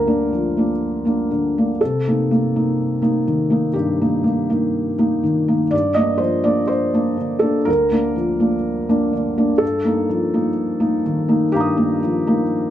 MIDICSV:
0, 0, Header, 1, 2, 480
1, 0, Start_track
1, 0, Key_signature, -2, "minor"
1, 0, Tempo, 983607
1, 878, Time_signature, 4, 2, 24, 8
1, 3272, Tempo, 967742
1, 6247, End_track
2, 0, Start_track
2, 0, Title_t, "Felt piano"
2, 0, Program_c, 0, 0
2, 0, Control_c, 0, 64, 127
2, 0, Note_on_c, 0, 38, 38
2, 0, Note_on_c, 0, 50, 33
2, 0, Note_on_c, 0, 53, 33
2, 0, Note_on_c, 0, 58, 33
2, 0, Note_on_c, 0, 62, 36
2, 0, Note_on_c, 0, 70, 67
2, 0, Note_on_c, 0, 72, 61
2, 34, Note_off_c, 0, 58, 0
2, 34, Note_on_c, 0, 58, 31
2, 36, Note_off_c, 0, 62, 0
2, 36, Note_on_c, 0, 62, 37
2, 143, Note_off_c, 0, 58, 0
2, 144, Note_off_c, 0, 62, 0
2, 159, Note_off_c, 0, 53, 0
2, 159, Note_on_c, 0, 53, 34
2, 278, Note_on_c, 0, 58, 31
2, 286, Note_on_c, 0, 62, 36
2, 350, Note_off_c, 0, 53, 0
2, 497, Note_off_c, 0, 58, 0
2, 501, Note_off_c, 0, 62, 0
2, 513, Note_on_c, 0, 58, 33
2, 520, Note_on_c, 0, 62, 36
2, 623, Note_off_c, 0, 58, 0
2, 627, Note_off_c, 0, 62, 0
2, 639, Note_off_c, 0, 50, 0
2, 639, Note_on_c, 0, 50, 35
2, 770, Note_on_c, 0, 58, 31
2, 772, Note_on_c, 0, 62, 35
2, 832, Note_off_c, 0, 50, 0
2, 874, Note_off_c, 0, 58, 0
2, 875, Note_off_c, 0, 62, 0
2, 875, Note_off_c, 0, 70, 0
2, 882, Note_on_c, 0, 69, 60
2, 887, Control_c, 0, 64, 0
2, 889, Note_off_c, 0, 38, 0
2, 889, Note_off_c, 0, 72, 0
2, 893, Note_on_c, 0, 48, 40
2, 966, Control_c, 0, 64, 127
2, 1003, Note_off_c, 0, 48, 0
2, 1012, Note_on_c, 0, 63, 36
2, 1013, Note_on_c, 0, 58, 31
2, 1113, Note_off_c, 0, 63, 0
2, 1114, Note_off_c, 0, 58, 0
2, 1128, Note_on_c, 0, 58, 35
2, 1242, Note_off_c, 0, 58, 0
2, 1249, Note_on_c, 0, 63, 33
2, 1250, Note_on_c, 0, 58, 31
2, 1461, Note_off_c, 0, 58, 0
2, 1461, Note_off_c, 0, 63, 0
2, 1472, Note_on_c, 0, 58, 32
2, 1476, Note_on_c, 0, 63, 38
2, 1581, Note_off_c, 0, 58, 0
2, 1583, Note_off_c, 0, 63, 0
2, 1598, Note_on_c, 0, 51, 35
2, 1708, Note_on_c, 0, 58, 33
2, 1715, Note_on_c, 0, 63, 40
2, 1787, Note_off_c, 0, 51, 0
2, 1818, Note_off_c, 0, 58, 0
2, 1821, Note_off_c, 0, 63, 0
2, 1823, Note_on_c, 0, 67, 59
2, 1832, Note_on_c, 0, 43, 41
2, 1834, Note_off_c, 0, 69, 0
2, 1947, Note_off_c, 0, 43, 0
2, 1959, Note_on_c, 0, 58, 35
2, 1959, Note_on_c, 0, 63, 39
2, 2061, Note_off_c, 0, 58, 0
2, 2062, Note_off_c, 0, 63, 0
2, 2068, Note_on_c, 0, 58, 35
2, 2187, Note_off_c, 0, 58, 0
2, 2194, Note_on_c, 0, 58, 33
2, 2196, Note_on_c, 0, 63, 36
2, 2413, Note_off_c, 0, 58, 0
2, 2414, Note_off_c, 0, 63, 0
2, 2433, Note_on_c, 0, 58, 37
2, 2435, Note_on_c, 0, 63, 41
2, 2541, Note_off_c, 0, 58, 0
2, 2542, Note_off_c, 0, 63, 0
2, 2546, Note_off_c, 0, 67, 0
2, 2554, Note_on_c, 0, 51, 35
2, 2675, Note_on_c, 0, 58, 35
2, 2676, Note_on_c, 0, 63, 36
2, 2746, Note_off_c, 0, 51, 0
2, 2783, Note_off_c, 0, 58, 0
2, 2783, Note_off_c, 0, 63, 0
2, 2785, Note_on_c, 0, 74, 71
2, 2792, Note_on_c, 0, 43, 45
2, 2802, Control_c, 0, 64, 0
2, 2886, Control_c, 0, 64, 127
2, 2900, Note_on_c, 0, 75, 76
2, 2909, Note_off_c, 0, 43, 0
2, 2909, Note_off_c, 0, 74, 0
2, 2910, Note_on_c, 0, 58, 37
2, 2915, Note_on_c, 0, 62, 37
2, 3014, Note_on_c, 0, 72, 65
2, 3019, Note_off_c, 0, 58, 0
2, 3021, Note_off_c, 0, 62, 0
2, 3026, Note_off_c, 0, 75, 0
2, 3026, Note_on_c, 0, 53, 39
2, 3141, Note_on_c, 0, 74, 73
2, 3142, Note_off_c, 0, 72, 0
2, 3148, Note_on_c, 0, 58, 36
2, 3150, Note_on_c, 0, 62, 40
2, 3219, Note_off_c, 0, 53, 0
2, 3257, Note_on_c, 0, 72, 71
2, 3265, Note_off_c, 0, 74, 0
2, 3369, Note_off_c, 0, 58, 0
2, 3370, Note_off_c, 0, 62, 0
2, 3387, Note_on_c, 0, 58, 35
2, 3391, Note_on_c, 0, 62, 41
2, 3498, Note_off_c, 0, 58, 0
2, 3500, Note_off_c, 0, 62, 0
2, 3503, Note_on_c, 0, 50, 35
2, 3613, Note_on_c, 0, 69, 71
2, 3624, Note_on_c, 0, 58, 39
2, 3626, Note_off_c, 0, 72, 0
2, 3626, Note_on_c, 0, 62, 43
2, 3701, Note_off_c, 0, 50, 0
2, 3737, Note_off_c, 0, 58, 0
2, 3738, Note_off_c, 0, 62, 0
2, 3742, Note_on_c, 0, 70, 81
2, 3744, Note_off_c, 0, 69, 0
2, 3750, Note_on_c, 0, 38, 48
2, 3761, Control_c, 0, 64, 0
2, 3851, Control_c, 0, 64, 127
2, 3870, Note_off_c, 0, 38, 0
2, 3873, Note_on_c, 0, 58, 38
2, 3874, Note_on_c, 0, 62, 39
2, 3983, Note_off_c, 0, 58, 0
2, 3983, Note_off_c, 0, 62, 0
2, 3991, Note_on_c, 0, 53, 42
2, 4111, Note_on_c, 0, 58, 40
2, 4116, Note_on_c, 0, 62, 38
2, 4186, Note_off_c, 0, 53, 0
2, 4335, Note_off_c, 0, 58, 0
2, 4337, Note_off_c, 0, 62, 0
2, 4357, Note_on_c, 0, 58, 42
2, 4358, Note_on_c, 0, 62, 46
2, 4465, Note_off_c, 0, 58, 0
2, 4466, Note_off_c, 0, 62, 0
2, 4474, Note_on_c, 0, 50, 43
2, 4596, Note_on_c, 0, 58, 38
2, 4599, Note_on_c, 0, 62, 44
2, 4666, Note_off_c, 0, 50, 0
2, 4698, Note_on_c, 0, 69, 80
2, 4703, Note_off_c, 0, 58, 0
2, 4705, Note_off_c, 0, 62, 0
2, 4709, Note_off_c, 0, 70, 0
2, 4709, Note_on_c, 0, 43, 51
2, 4724, Control_c, 0, 64, 0
2, 4793, Control_c, 0, 64, 127
2, 4827, Note_off_c, 0, 43, 0
2, 4830, Note_on_c, 0, 58, 43
2, 4836, Note_on_c, 0, 63, 44
2, 4938, Note_off_c, 0, 58, 0
2, 4942, Note_off_c, 0, 63, 0
2, 4954, Note_on_c, 0, 53, 43
2, 5074, Note_on_c, 0, 58, 41
2, 5075, Note_on_c, 0, 63, 42
2, 5143, Note_off_c, 0, 53, 0
2, 5291, Note_off_c, 0, 58, 0
2, 5292, Note_off_c, 0, 63, 0
2, 5303, Note_on_c, 0, 58, 38
2, 5303, Note_on_c, 0, 63, 45
2, 5413, Note_off_c, 0, 58, 0
2, 5413, Note_off_c, 0, 63, 0
2, 5430, Note_on_c, 0, 51, 43
2, 5544, Note_on_c, 0, 58, 45
2, 5547, Note_on_c, 0, 63, 46
2, 5620, Note_off_c, 0, 51, 0
2, 5652, Note_off_c, 0, 58, 0
2, 5654, Note_off_c, 0, 63, 0
2, 5658, Note_off_c, 0, 69, 0
2, 5660, Note_on_c, 0, 67, 78
2, 5668, Note_on_c, 0, 77, 39
2, 5670, Note_on_c, 0, 43, 51
2, 5682, Note_on_c, 0, 82, 39
2, 5702, Note_on_c, 0, 87, 40
2, 5784, Note_off_c, 0, 43, 0
2, 5785, Note_on_c, 0, 63, 47
2, 5786, Note_on_c, 0, 58, 44
2, 5894, Note_off_c, 0, 63, 0
2, 5895, Note_off_c, 0, 58, 0
2, 5913, Note_on_c, 0, 53, 43
2, 6033, Note_on_c, 0, 63, 50
2, 6035, Note_on_c, 0, 58, 41
2, 6103, Note_off_c, 0, 53, 0
2, 6247, Note_off_c, 0, 58, 0
2, 6247, Note_off_c, 0, 63, 0
2, 6247, Note_off_c, 0, 67, 0
2, 6247, Note_off_c, 0, 77, 0
2, 6247, Note_off_c, 0, 82, 0
2, 6247, Note_off_c, 0, 87, 0
2, 6247, End_track
0, 0, End_of_file